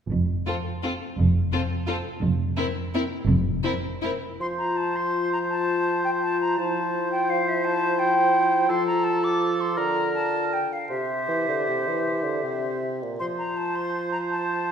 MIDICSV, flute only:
0, 0, Header, 1, 2, 480
1, 0, Start_track
1, 0, Key_signature, -1, "major"
1, 0, Tempo, 351906
1, 145, Time_signature, 3, 2, 24, 8
1, 3507, Tempo, 366077
1, 8307, Tempo, 355240
1, 13587, Tempo, 383142
1, 17427, Tempo, 360794
1, 19440, End_track
2, 0, Start_track
2, 0, Title_t, "Flute"
2, 0, Program_c, 0, 73
2, 5911, Note_on_c, 0, 84, 61
2, 5989, Note_off_c, 0, 84, 0
2, 6139, Note_on_c, 0, 82, 53
2, 6387, Note_on_c, 0, 81, 53
2, 6406, Note_off_c, 0, 82, 0
2, 6635, Note_on_c, 0, 84, 54
2, 6655, Note_off_c, 0, 81, 0
2, 7110, Note_off_c, 0, 84, 0
2, 7118, Note_on_c, 0, 82, 50
2, 7196, Note_off_c, 0, 82, 0
2, 7334, Note_on_c, 0, 81, 57
2, 8043, Note_off_c, 0, 81, 0
2, 8057, Note_on_c, 0, 79, 52
2, 8136, Note_off_c, 0, 79, 0
2, 8292, Note_on_c, 0, 81, 61
2, 8537, Note_off_c, 0, 81, 0
2, 8545, Note_on_c, 0, 82, 54
2, 8775, Note_on_c, 0, 81, 62
2, 8795, Note_off_c, 0, 82, 0
2, 9490, Note_off_c, 0, 81, 0
2, 9498, Note_on_c, 0, 79, 60
2, 9742, Note_on_c, 0, 77, 60
2, 9762, Note_off_c, 0, 79, 0
2, 9990, Note_on_c, 0, 76, 62
2, 10011, Note_off_c, 0, 77, 0
2, 10209, Note_on_c, 0, 81, 72
2, 10229, Note_off_c, 0, 76, 0
2, 10680, Note_on_c, 0, 79, 65
2, 10700, Note_off_c, 0, 81, 0
2, 11638, Note_on_c, 0, 84, 67
2, 11659, Note_off_c, 0, 79, 0
2, 11859, Note_off_c, 0, 84, 0
2, 11867, Note_on_c, 0, 82, 62
2, 12096, Note_on_c, 0, 81, 70
2, 12116, Note_off_c, 0, 82, 0
2, 12365, Note_on_c, 0, 86, 65
2, 12385, Note_off_c, 0, 81, 0
2, 12864, Note_on_c, 0, 84, 55
2, 12884, Note_off_c, 0, 86, 0
2, 13099, Note_on_c, 0, 82, 62
2, 13119, Note_off_c, 0, 84, 0
2, 13582, Note_off_c, 0, 82, 0
2, 13590, Note_on_c, 0, 81, 61
2, 14075, Note_on_c, 0, 79, 53
2, 14094, Note_off_c, 0, 81, 0
2, 14320, Note_on_c, 0, 77, 47
2, 14339, Note_off_c, 0, 79, 0
2, 14529, Note_off_c, 0, 77, 0
2, 14537, Note_on_c, 0, 76, 52
2, 17148, Note_off_c, 0, 76, 0
2, 17414, Note_on_c, 0, 84, 61
2, 17493, Note_off_c, 0, 84, 0
2, 17655, Note_on_c, 0, 82, 54
2, 17912, Note_on_c, 0, 81, 59
2, 17932, Note_off_c, 0, 82, 0
2, 18154, Note_on_c, 0, 84, 58
2, 18174, Note_off_c, 0, 81, 0
2, 18628, Note_off_c, 0, 84, 0
2, 18636, Note_on_c, 0, 82, 58
2, 18716, Note_off_c, 0, 82, 0
2, 18884, Note_on_c, 0, 81, 63
2, 19440, Note_off_c, 0, 81, 0
2, 19440, End_track
0, 0, End_of_file